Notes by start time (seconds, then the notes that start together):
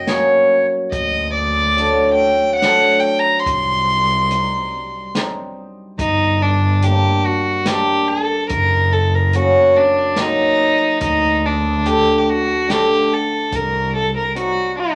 0.07 F#3 A#3 C#4 C#5, snare, closed hi-hat
0.92 D2 D#5, kick, closed hi-hat
1.34 D5
1.75 F#3 A3 D4, closed hi-hat
2.14 G5
2.56 F#5
2.61 F#3 A3 D4, snare, closed hi-hat
3.00 G5
3.19 A#5
3.42 C6, kick
3.47 C2, closed hi-hat
4.30 G3 C4 D#4, closed hi-hat
5.15 G3 C4 D#4, snare, closed hi-hat
5.99 G1 D#4, kick, closed hi-hat
6.42 D4
6.82 G3 A#3 D4 G4, closed hi-hat
7.26 F#4
7.66 G3 A#3 D4 G4, snare, closed hi-hat
8.08 A4
8.49 F#1 A#4, kick, closed hi-hat
8.93 A4
9.15 A#4
9.33 F#3 A#3 C#4 F#4, closed hi-hat
9.76 D4
10.16 F#3 A#3 D#4, snare, closed hi-hat
10.21 D#4
11.01 D2 D#4, kick, closed hi-hat
11.46 D4
11.84 D3 A3 D4 G4, closed hi-hat
12.18 G4
12.29 F#4
12.68 D3 A3 D4 G4, snare, closed hi-hat
13.14 A4
13.52 C2 A#4, kick, closed hi-hat
13.97 A4
14.17 A#4
14.35 G3 C4 D#4 F#4, closed hi-hat
14.79 D4